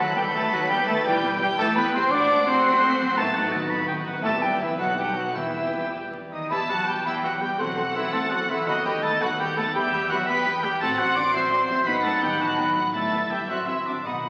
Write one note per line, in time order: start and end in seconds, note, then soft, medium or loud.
0.00 0.08 D#2 medium
0.00 1.08 D#3 medium
0.00 0.16 F#3 medium
0.00 0.17 F#3 loud
0.00 0.52 A3 medium
0.00 0.15 F#4 medium
0.00 0.16 F#4 medium
0.00 1.06 F#4 medium
0.00 1.07 A4 medium
0.00 2.13 B4 loud
0.00 0.15 F#5 loud
0.00 1.07 B5 loud
0.00 0.17 F#6 loud
0.16 0.25 D#2 medium
0.16 0.34 G3 loud
0.16 0.35 G3 medium
0.16 0.23 B3 medium
0.16 1.07 F#4 medium
0.16 0.25 G4 medium
0.16 0.22 G5 loud
0.16 0.35 G6 loud
0.34 0.43 D#2 medium
0.34 0.52 A3 medium
0.34 0.42 A3 medium
0.34 0.53 A3 loud
0.34 0.69 D#4 medium
0.34 0.42 A4 medium
0.34 0.52 A5 loud
0.34 0.54 A6 loud
0.52 0.60 D#2 loud
0.52 0.70 F#3 loud
0.52 0.69 F#3 medium
0.52 0.71 F#3 loud
0.52 0.88 A3 medium
0.52 0.61 F#4 loud
0.52 0.71 F#5 loud
0.52 0.71 F#6 loud
0.69 0.78 D#2 medium
0.69 0.78 G3 medium
0.69 0.88 G3 loud
0.69 0.78 B3 medium
0.69 1.07 D#4 medium
0.69 0.89 G4 medium
0.69 0.86 G5 loud
0.69 0.88 G6 loud
0.87 0.96 D#2 medium
0.87 1.05 A3 loud
0.87 0.95 A3 medium
0.87 1.08 A3 medium
0.87 1.06 A3 loud
0.87 1.05 A4 loud
0.87 0.93 A5 loud
0.87 1.05 A6 loud
1.03 1.55 E2 loud
1.03 1.13 E2 medium
1.03 1.22 E3 loud
1.03 2.14 E3 medium
1.03 1.38 G3 loud
1.03 1.41 G3 loud
1.03 2.11 E4 medium
1.03 1.40 G4 loud
1.03 2.10 G4 medium
1.03 1.39 G5 loud
1.03 2.12 G5 loud
1.03 1.40 G6 loud
1.23 1.32 E2 medium
1.23 1.30 B3 medium
1.39 1.49 E2 medium
1.39 1.48 G3 loud
1.39 1.48 G3 medium
1.39 1.49 G3 loud
1.39 1.76 G3 medium
1.39 1.50 G4 medium
1.39 1.46 G5 loud
1.39 1.59 G6 loud
1.58 1.66 E2 loud
1.58 1.76 E3 loud
1.58 1.66 A3 loud
1.58 1.77 A3 loud
1.58 1.94 E4 medium
1.58 1.67 A4 loud
1.58 1.77 A5 loud
1.58 1.77 A6 loud
1.76 1.85 E2 medium
1.76 2.14 G3 medium
1.76 1.94 B3 loud
1.76 1.84 B3 medium
1.76 1.95 B3 loud
1.76 1.94 B4 loud
1.76 1.96 B5 loud
1.76 1.85 B6 loud
1.94 2.03 E2 medium
1.94 2.02 G3 medium
1.94 2.12 C4 loud
1.94 2.13 C4 loud
1.94 2.15 E4 medium
1.94 2.13 C5 loud
1.94 2.13 C6 loud
1.94 2.13 C7 loud
2.11 4.21 A1 medium
2.11 3.17 A2 medium
2.11 3.13 A3 loud
2.11 2.47 D4 loud
2.11 2.48 D4 loud
2.11 4.20 F#4 loud
2.11 3.13 F#4 medium
2.11 3.13 C5 loud
2.11 2.50 D5 loud
2.11 3.16 F#5 loud
2.11 2.47 D6 loud
2.11 2.48 D7 loud
2.31 4.26 F#4 medium
2.47 2.82 A3 medium
2.47 3.16 C4 loud
2.47 3.20 C5 loud
2.47 3.19 C6 loud
2.47 3.18 C7 loud
2.66 3.00 F#3 medium
2.83 4.26 A3 medium
3.01 3.70 F#3 medium
3.17 4.26 A2 medium
3.17 3.53 A3 loud
3.17 3.54 A3 loud
3.17 5.33 B3 loud
3.17 4.20 D#4 medium
3.17 3.53 A4 medium
3.17 5.32 B4 medium
3.17 3.36 A5 loud
3.17 3.53 A5 loud
3.17 3.53 A6 loud
3.34 4.26 D#4 medium
3.34 3.54 F#5 medium
3.52 3.87 D#3 medium
3.52 3.72 A5 loud
3.70 4.04 F#3 medium
3.70 3.87 B5 loud
3.88 4.26 D#3 medium
3.88 3.96 G5 medium
4.05 4.25 F#3 medium
4.05 4.23 F#5 medium
4.22 4.79 G1 medium
4.22 4.81 G2 medium
4.22 4.31 A3 loud
4.22 4.41 A3 loud
4.22 4.76 E4 medium
4.22 4.75 G4 medium
4.22 4.32 A4 medium
4.22 4.59 E5 medium
4.22 4.44 A5 loud
4.22 4.41 A6 loud
4.41 4.81 G3 medium
4.41 4.60 G3 medium
4.41 4.60 G4 medium
4.41 4.60 G5 medium
4.41 4.62 G6 medium
4.60 4.79 E3 medium
4.60 4.80 E3 medium
4.60 4.80 E4 medium
4.60 4.69 E4 medium
4.60 5.16 B4 medium
4.60 4.78 E5 medium
4.64 4.81 E6 medium
4.78 5.36 B1 medium
4.78 5.37 B2 medium
4.78 4.98 F#3 medium
4.78 5.32 D#4 medium
4.78 4.97 F#4 medium
4.78 5.33 A4 medium
4.78 4.97 F#5 medium
4.78 5.36 F#5 medium
4.78 4.99 F#6 medium
4.96 5.16 G3 medium
4.96 5.06 G3 medium
4.96 5.38 A3 medium
4.96 5.18 G4 medium
4.96 5.18 G5 medium
5.00 5.18 G6 medium
5.14 5.35 F#3 medium
5.14 5.36 F#3 medium
5.14 5.38 D#4 medium
5.14 5.37 F#4 medium
5.14 5.55 B4 medium
5.14 5.35 F#5 medium
5.19 5.37 F#6 medium
5.35 5.89 E2 loud
5.35 6.32 E2 medium
5.35 5.93 E3 medium
5.35 6.50 E3 medium
5.35 5.93 E3 medium
5.35 6.28 B3 medium
5.35 5.94 E4 medium
5.35 6.28 E4 medium
5.35 6.29 G4 medium
5.35 6.29 B4 medium
5.35 5.92 E5 medium
5.35 6.22 G5 medium
5.35 5.94 E6 medium
5.75 6.12 G3 medium
5.93 6.31 E4 medium
6.13 7.05 G3 medium
6.32 6.50 D#3 medium
6.32 6.52 D#4 medium
6.32 6.87 E4 medium
6.32 6.52 D#5 medium
6.32 6.50 D#6 medium
6.50 6.99 E2 medium
6.50 6.70 E3 medium
6.50 7.59 E3 medium
6.50 7.55 B3 medium
6.50 6.59 B3 medium
6.50 6.68 E4 medium
6.50 7.55 G4 medium
6.50 6.59 G4 medium
6.50 6.71 E5 loud
6.50 7.02 A5 loud
6.50 6.56 B5 medium
6.50 6.69 E6 medium
6.69 6.88 F#3 medium
6.69 6.76 B3 medium
6.69 6.89 F#4 medium
6.69 6.77 G4 medium
6.69 7.61 G4 medium
6.69 6.79 G4 medium
6.69 6.89 F#5 medium
6.69 6.75 B5 medium
6.69 6.88 F#6 loud
6.88 6.96 G3 medium
6.88 6.95 B3 medium
6.88 7.23 E4 medium
6.88 7.05 G4 medium
6.88 6.96 G4 medium
6.88 6.95 G4 medium
6.88 7.08 G5 medium
6.88 6.94 B5 medium
6.88 6.96 G6 loud
7.05 7.53 E2 medium
7.05 7.24 E3 medium
7.05 7.41 G3 medium
7.05 7.13 B3 medium
7.05 7.23 E4 medium
7.05 7.14 G4 medium
7.05 7.13 G4 medium
7.05 7.26 E5 medium
7.05 7.60 G5 medium
7.05 7.11 B5 medium
7.05 7.14 E6 loud
7.23 7.42 F#3 medium
7.23 7.31 B3 medium
7.23 7.95 E4 medium
7.23 7.32 F#4 medium
7.23 7.31 G4 medium
7.23 7.33 G4 medium
7.23 7.43 F#5 medium
7.23 7.29 B5 medium
7.23 7.33 F#6 medium
7.40 7.60 G3 medium
7.40 7.62 G3 medium
7.40 7.48 B3 medium
7.40 7.48 G4 medium
7.40 7.59 G4 medium
7.40 7.50 G4 medium
7.40 7.62 G5 medium
7.40 7.46 B5 medium
7.40 7.60 G6 medium
7.58 8.07 E2 medium
7.58 8.11 E2 loud
7.58 8.69 E3 medium
7.58 7.95 F#3 medium
7.58 8.67 C4 medium
7.58 7.67 C4 medium
7.58 7.97 F#4 medium
7.58 9.74 A4 medium
7.58 7.66 A4 medium
7.58 7.68 A4 medium
7.58 7.96 F#5 medium
7.58 8.66 F#5 loud
7.58 7.65 C6 medium
7.58 7.95 F#6 medium
7.77 7.84 C4 medium
7.77 8.84 F#4 medium
7.77 7.84 A4 medium
7.77 7.87 A4 medium
7.77 7.83 C6 medium
7.94 8.13 E3 medium
7.94 8.03 C4 medium
7.94 8.15 E4 medium
7.94 8.30 E4 medium
7.94 8.03 A4 medium
7.94 8.05 A4 medium
7.94 8.13 E5 medium
7.94 8.00 C6 medium
7.94 8.14 E6 loud
8.12 8.61 E2 medium
8.12 8.32 A3 medium
8.12 8.49 A3 medium
8.12 8.21 C4 medium
8.12 8.33 A4 medium
8.12 8.21 A4 medium
8.12 8.22 A4 medium
8.12 8.29 A5 medium
8.12 8.18 C6 medium
8.12 8.32 A6 loud
8.30 8.39 F#3 medium
8.30 8.38 C4 medium
8.30 8.69 E4 medium
8.30 8.51 F#4 medium
8.30 8.39 A4 medium
8.30 8.40 A4 medium
8.30 8.51 F#5 medium
8.30 8.37 C6 medium
8.30 8.50 F#6 loud
8.49 8.67 E3 medium
8.49 9.21 A3 medium
8.49 8.57 C4 medium
8.49 8.68 E4 medium
8.49 8.57 A4 medium
8.49 8.56 A4 medium
8.49 8.69 E5 medium
8.49 8.56 C6 medium
8.49 8.69 E6 medium
8.66 9.15 D#2 medium
8.66 9.77 D#3 medium
8.66 8.85 F#3 loud
8.66 8.74 B3 medium
8.66 10.78 B3 medium
8.66 8.87 F#4 medium
8.66 8.74 A4 medium
8.66 9.20 D#5 loud
8.66 8.85 F#5 loud
8.66 8.74 B5 medium
8.66 8.75 F#6 loud
8.85 9.03 G3 medium
8.85 8.93 B3 medium
8.85 9.77 F#4 medium
8.85 9.05 G4 medium
8.85 8.93 A4 medium
8.85 9.04 G5 medium
8.85 8.91 B5 medium
8.85 8.93 G6 loud
9.02 9.22 A3 medium
9.02 9.10 B3 medium
9.02 9.39 D#4 medium
9.02 9.10 A4 medium
9.02 9.21 A4 medium
9.02 9.23 A5 loud
9.02 9.10 B5 medium
9.02 9.21 A6 loud
9.21 9.69 D#2 medium
9.21 9.39 F#3 loud
9.21 9.57 A3 medium
9.21 9.28 B3 medium
9.21 9.30 F#4 loud
9.21 9.29 A4 medium
9.21 9.75 F#5 medium
9.21 9.39 F#5 loud
9.21 9.28 B5 medium
9.21 9.40 F#6 loud
9.38 9.57 G3 loud
9.38 9.47 B3 medium
9.38 9.77 D#4 medium
9.38 9.59 G4 loud
9.38 9.46 A4 medium
9.38 9.48 A4 medium
9.38 9.48 G5 medium
9.38 9.45 B5 medium
9.38 9.57 G6 loud
9.56 9.74 A3 medium
9.56 9.77 A3 medium
9.56 9.65 B3 medium
9.56 9.64 A4 medium
9.56 9.74 A4 medium
9.56 9.65 A4 medium
9.56 9.66 A5 medium
9.56 9.62 B5 medium
9.56 9.76 A6 loud
9.74 10.22 E2 loud
9.74 10.84 E3 medium
9.74 10.10 G3 loud
9.74 9.83 B3 medium
9.74 9.83 G4 medium
9.74 10.12 G4 medium
9.74 10.80 G4 loud
9.74 9.82 G4 medium
9.74 10.28 E5 loud
9.74 10.09 G5 loud
9.74 9.81 B5 medium
9.74 10.10 G6 loud
9.93 10.00 B3 medium
9.93 10.00 G4 medium
9.93 10.02 G4 medium
9.93 9.99 B5 medium
10.09 10.28 F#3 loud
10.09 10.46 G3 medium
10.09 10.18 B3 medium
10.09 10.28 F#4 medium
10.09 10.18 G4 medium
10.09 10.19 G4 medium
10.09 10.26 F#5 loud
10.09 10.18 B5 medium
10.09 10.18 F#6 loud
10.27 10.76 E2 loud
10.27 10.36 B3 medium
10.27 10.63 B3 loud
10.27 10.64 E4 medium
10.27 10.36 G4 medium
10.27 10.37 G4 medium
10.27 10.66 B4 loud
10.27 10.82 G5 loud
10.27 10.62 B5 loud
10.27 10.35 B5 medium
10.27 10.63 B6 loud
10.46 10.83 G3 medium
10.46 10.53 B3 medium
10.46 10.54 G4 medium
10.46 10.53 G4 medium
10.46 10.52 B5 medium
10.63 10.82 G3 loud
10.63 10.71 B3 medium
10.63 10.83 E4 medium
10.63 10.71 G4 medium
10.63 10.82 G4 loud
10.63 10.72 G4 medium
10.63 10.71 G5 loud
10.63 10.70 B5 medium
10.63 10.81 G6 loud
10.81 11.28 A1 loud
10.81 11.87 A2 medium
10.81 10.89 A3 loud
10.81 11.30 C4 medium
10.81 10.90 C4 medium
10.81 11.88 F#4 medium
10.81 10.89 F#4 medium
10.81 11.31 F#4 medium
10.81 11.00 A4 loud
10.81 11.33 F#5 loud
10.81 11.00 A5 loud
10.81 11.88 C6 loud
10.81 10.88 A6 loud
10.98 11.07 F#3 medium
10.98 11.06 C4 medium
10.98 11.18 F#4 medium
10.98 11.06 F#4 medium
10.98 12.96 F#4 medium
10.98 11.15 F#5 loud
10.98 11.16 F#6 loud
11.16 11.52 A3 medium
11.16 11.24 C4 medium
11.16 11.25 D4 loud
11.16 11.24 F#4 medium
11.16 11.33 D5 loud
11.16 11.33 D6 loud
11.16 11.34 D7 loud
11.33 11.81 A1 loud
11.33 11.70 F#3 medium
11.33 11.85 C4 medium
11.33 11.41 C4 medium
11.33 11.86 C4 medium
11.33 11.85 F#4 medium
11.33 11.41 F#4 medium
11.33 11.88 C5 loud
11.33 11.51 E5 medium
11.33 11.85 C6 medium
11.33 11.86 C7 loud
11.52 12.97 A3 medium
11.52 11.58 C4 medium
11.52 11.59 F#4 medium
11.52 11.69 D5 medium
11.69 12.40 F#3 medium
11.69 11.77 C4 medium
11.69 11.77 F#4 medium
11.69 11.86 E5 medium
11.85 12.34 A1 medium
11.85 12.96 A2 medium
11.85 12.39 B3 medium
11.85 11.94 B3 medium
11.85 12.04 B3 loud
11.85 12.39 D#4 medium
11.85 12.94 D#4 medium
11.85 11.94 D#4 medium
11.85 12.06 B4 loud
11.85 12.39 F#5 loud
11.85 11.94 B5 loud
11.85 13.21 B5 loud
11.85 12.04 B6 loud
12.03 12.12 A3 medium
12.03 12.12 B3 medium
12.03 12.12 D#4 medium
12.03 12.96 D#4 medium
12.03 12.24 A4 medium
12.03 12.22 A5 medium
12.03 12.21 A6 loud
12.21 12.59 D#3 medium
12.21 12.40 G3 medium
12.21 12.29 B3 medium
12.21 12.29 D#4 medium
12.21 12.39 G4 medium
12.21 12.42 G5 medium
12.21 12.39 G6 loud
12.39 12.88 A1 medium
12.39 12.77 F#3 medium
12.39 12.94 F#3 medium
12.39 12.47 B3 medium
12.39 12.78 B3 medium
12.39 12.47 D#4 medium
12.39 12.78 D#4 medium
12.39 12.74 F#4 loud
12.39 12.76 F#5 medium
12.39 12.58 A5 medium
12.39 12.93 F#6 loud
12.58 12.96 D#3 medium
12.58 12.66 B3 medium
12.58 12.65 D#4 medium
12.58 12.76 G5 medium
12.76 12.96 F#3 medium
12.76 12.83 B3 medium
12.76 12.83 D#4 medium
12.76 12.94 F#5 medium
12.94 13.43 G1 medium
12.94 13.51 G2 medium
12.94 13.30 A3 medium
12.94 13.45 B3 medium
12.94 13.02 B3 medium
12.94 13.45 E4 medium
12.94 13.50 E4 medium
12.94 13.02 E4 medium
12.94 13.33 A4 medium
12.94 14.03 E5 medium
12.94 13.32 A5 medium
12.94 13.30 A6 loud
13.13 13.52 G3 soft
13.13 13.20 B3 medium
13.13 13.20 E4 medium
13.30 13.49 G3 medium
13.30 13.38 B3 medium
13.30 13.38 E4 medium
13.30 13.51 E4 medium
13.30 13.50 G4 medium
13.30 13.52 B4 medium
13.30 13.48 G5 medium
13.30 13.49 G6 medium
13.48 13.99 A1 medium
13.48 14.08 A2 medium
13.48 13.68 F#3 medium
13.48 14.05 C4 medium
13.48 13.57 C4 medium
13.48 14.04 F#4 medium
13.48 14.29 F#4 medium
13.48 13.70 F#4 medium
13.48 13.57 F#4 medium
13.48 13.68 F#5 medium
13.48 14.07 C6 medium
13.48 13.68 F#6 medium
13.66 13.76 E3 medium
13.66 14.29 F#3 soft
13.66 13.75 C4 medium
13.66 13.88 E4 medium
13.66 13.75 F#4 medium
13.66 13.88 E5 medium
13.66 13.87 E6 medium
13.86 13.95 D3 medium
13.86 13.95 C4 soft
13.86 14.04 D4 medium
13.86 13.95 F#4 medium
13.86 14.26 F#4 soft
13.86 14.08 C5 soft
13.86 14.05 D5 medium
13.86 14.06 D6 medium
14.05 14.29 B1 medium
14.05 14.13 B2 soft
14.05 14.29 B2 soft
14.05 14.29 D#3 medium
14.05 14.29 B3 medium
14.05 14.14 B3 soft
14.05 14.29 D#4 medium
14.05 14.29 F#4 medium
14.05 14.14 F#4 medium
14.05 14.29 D#5 medium
14.05 14.29 F#5 medium
14.05 14.29 B5 medium
14.05 14.29 D#6 medium
14.14 14.20 B2 soft
14.21 14.28 B2 soft
14.26 14.29 B3 soft
14.26 14.29 F#4 soft